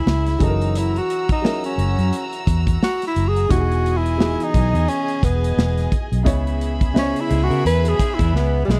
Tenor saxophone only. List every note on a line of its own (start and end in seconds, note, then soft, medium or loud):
0.00 0.45 E4 medium
0.43 0.79 D#4 medium
0.78 1.00 E4 medium
0.98 1.31 F#4 medium
1.32 1.63 D#4 medium
1.65 2.36 C#4 medium
2.84 3.04 F#4 medium
3.08 3.30 E4 loud
3.28 3.53 G#4 loud
3.51 3.99 F#4 loud
3.97 4.45 E4 loud
4.43 4.91 D#4 medium
4.89 5.26 C#4 medium
5.24 5.93 B3 medium
6.99 7.22 C#4 medium
7.21 7.46 E4 medium
7.44 7.66 F#4 medium
7.67 7.90 B4 loud
7.89 8.16 G#4 loud
8.15 8.36 E4 medium
8.36 8.62 B3 medium
8.65 8.72 G3 medium
8.71 8.80 G#3 loud